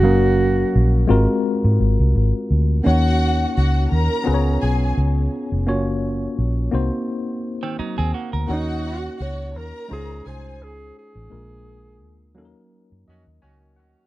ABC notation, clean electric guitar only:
X:1
M:4/4
L:1/16
Q:"Swing 16ths" 1/4=85
K:Ebdor
V:1 name="Clean electric guitar"
z16 | z16 | z8 z3 [E,C] [G,E] [CA] [B,G] B- | B z12 z3 |
z16 |]